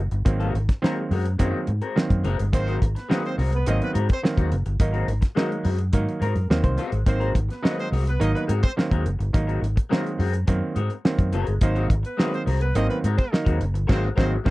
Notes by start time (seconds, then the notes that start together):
0.11 G1, muted clean electric guitar stroke, closed hi-hat
0.25 G#1 D#3 F#3 A#3 C4, muted clean electric guitar stroke, kick, closed hi-hat
0.40 G#3 C4 F#4 A#4, closed hi-hat
0.54 G#1, muted clean electric guitar stroke, closed hi-hat
0.69 muted clean electric guitar stroke, kick, snare, closed hi-hat
0.82 D#3 F#3 G#3 A#3 C4 F#4 A#4, snare
0.97 muted clean electric guitar stroke
1.11 F#2 G#3 C4 F#4 A#4, open hi-hat
1.25 muted clean electric guitar stroke, closed hi-hat
1.39 F#2 D#3 F#3 G#3 A#3 C4 F#4 A#4, kick, closed hi-hat
1.67 G#2, muted clean electric guitar stroke, closed hi-hat
1.82 G#3 C4 F#4 A#4, closed hi-hat
1.96 D#3 F#3 A#3 C4, snare
2.09 F#2, muted clean electric guitar stroke, kick, closed hi-hat
2.24 F#1 G#3 C4 F#4 A#4, closed hi-hat
2.39 G1, muted clean electric guitar stroke, closed hi-hat
2.52 G#1 D#3 F#3 A#3 C4 C5, muted clean electric guitar stroke, kick, closed hi-hat
2.67 G#3 C4 F#4 A#4, closed hi-hat
2.81 G#1, muted clean electric guitar stroke, kick, closed hi-hat
2.95 B3 B4, muted clean electric guitar stroke, snare, closed hi-hat
3.09 D#3 F#3 G#3 A#3 B3 C4 F#4 A#4 B4, snare
3.23 C4 C5, muted clean electric guitar stroke, closed hi-hat
3.38 C2 G#3 C4 F#4 A#4, open hi-hat
3.52 B3 B4, muted clean electric guitar stroke, closed hi-hat
3.66 G#1 D#3 F#3 A#3 C4 D#4 D#5, muted clean electric guitar stroke, closed hi-hat
3.82 B3 B4, closed hi-hat
3.93 G#2 G#3 C4 F#4 A#4, closed hi-hat
4.09 C4 C5, muted clean electric guitar stroke, kick, closed hi-hat
4.22 D#3 F#3 A#3 C4, muted clean electric guitar stroke, snare
4.37 D#2 G#3 C4 F#4 A#4, kick, closed hi-hat
4.51 F#1, muted clean electric guitar stroke, closed hi-hat
4.66 G1, muted clean electric guitar stroke, closed hi-hat
4.80 G#1 D#3 F#3 A#3 D#4, muted clean electric guitar stroke, kick, closed hi-hat
4.93 G#3 C4 F#4 A#4, closed hi-hat
5.08 G#1, muted clean electric guitar stroke, closed hi-hat
5.21 muted clean electric guitar stroke, kick, snare, closed hi-hat
5.35 D#3 F#3 G#3 A#3 C4 D#4 F#4 A#4, snare
5.50 muted clean electric guitar stroke, closed hi-hat
5.64 F#2 G#3 C4 F#4 A#4, open hi-hat
5.78 muted clean electric guitar stroke, closed hi-hat
5.92 G#2 D#3 F#3 A#3 D#4, muted clean electric guitar stroke, kick, closed hi-hat
6.09 closed hi-hat
6.20 G#2 G#3 C4 F#4 A#4, closed hi-hat
6.35 F#2, muted clean electric guitar stroke, closed hi-hat
6.50 D#2 D#3 F#3 A#3 C4 C5, snare
6.63 C2 C5, muted clean electric guitar stroke, kick, closed hi-hat
6.77 G#3 C4 F#4 A#4, closed hi-hat
6.92 G#1, muted clean electric guitar stroke, closed hi-hat
7.06 G#1 D#3 F#3 A#3 C4 C5, muted clean electric guitar stroke, kick, closed hi-hat
7.20 G#3 C4 F#4 A#4, closed hi-hat
7.34 G#1, muted clean electric guitar stroke, kick, closed hi-hat
7.49 B3 B4, muted clean electric guitar stroke, snare, closed hi-hat
7.63 D#3 F#3 G#3 A#3 B3 C4 D#4 F#4 A#4 B4, snare
7.77 C4 C5, muted clean electric guitar stroke, closed hi-hat
7.91 C2 G#3 C4 F#4 A#4, open hi-hat
8.06 B3 B4, muted clean electric guitar stroke, closed hi-hat
8.20 G#1 D#3 F#3 A#3 D#4 D#5, muted clean electric guitar stroke, closed hi-hat
8.34 B3 B4, closed hi-hat
8.47 G#2 G#3 C4 F#4 A#4, closed hi-hat
8.62 C4 C5, muted clean electric guitar stroke, kick, closed hi-hat
8.76 D#3 F#3 A#3 C4, muted clean electric guitar stroke, snare
8.91 D#2 G#3 C4 F#4 A#4, kick, closed hi-hat
9.05 F#1, muted clean electric guitar stroke, closed hi-hat
9.19 G1, muted clean electric guitar stroke, closed hi-hat
9.33 G#1 D#3 F#3 A#3 D#4, muted clean electric guitar stroke, kick, closed hi-hat
9.47 G#3 C4 F#4 A#4, closed hi-hat
9.61 G#1, muted clean electric guitar stroke, closed hi-hat
9.76 muted clean electric guitar stroke, kick, closed hi-hat
9.89 D#3 F#3 G#3 A#3 C4 F#4 A#4, snare
10.05 muted clean electric guitar stroke, closed hi-hat
10.19 F#2 G#3 C4 F#4 A#4, open hi-hat
10.33 muted clean electric guitar stroke, closed hi-hat
10.47 F#2 D#3 F#3 A#3 C4, muted clean electric guitar stroke, kick, closed hi-hat
10.75 G#2 G#3 C4 F#4 A#4, closed hi-hat
10.90 muted clean electric guitar stroke, closed hi-hat
11.05 D#3 F#3 A#3 C4, snare
11.19 F#2, muted clean electric guitar stroke, kick, closed hi-hat
11.33 F#1 G#3 C4 F#4 A#4, closed hi-hat
11.47 G1, muted clean electric guitar stroke, closed hi-hat
11.61 G#1 D#3 F#3 A#3 C4 D#4 C5, muted clean electric guitar stroke, kick, closed hi-hat
11.75 G#3 C4 F#4 A#4, closed hi-hat
11.89 G#1, muted clean electric guitar stroke, kick, closed hi-hat
12.03 B3 B4, muted clean electric guitar stroke, closed hi-hat
12.17 D#3 F#3 G#3 A#3 B3 C4 F#4 A#4 B4, snare
12.31 C4 C5, muted clean electric guitar stroke, closed hi-hat
12.46 C2 G#3 C4 F#4 A#4, open hi-hat
12.60 B3 B4, muted clean electric guitar stroke, closed hi-hat
12.75 G#1 D#3 F#3 A#3 C4 D#4 D#5, muted clean electric guitar stroke, closed hi-hat
12.88 B3 B4, closed hi-hat
13.04 G#2 G#3 C4 F#4 A#4, closed hi-hat
13.16 C4 C5, kick, closed hi-hat
13.32 D#3 F#3 A#3 D#4, muted clean electric guitar stroke, snare
13.45 D#2 G#3 C4 F#4 A#4, kick, closed hi-hat
13.60 F#1, muted clean electric guitar stroke, closed hi-hat
13.74 G1, muted clean electric guitar stroke, closed hi-hat
13.87 G#1 D#3 F#3 G#3 A#3 C4 F#4 A#4 C5, kick, snare, crash
14.16 G#1 D#3 F#3 G#3 A#3 C4 F#4 A#4 C5, kick, snare
14.44 G#1 D#3 F#3 G#3 A#3 C4 F#4 A#4 C5, kick, snare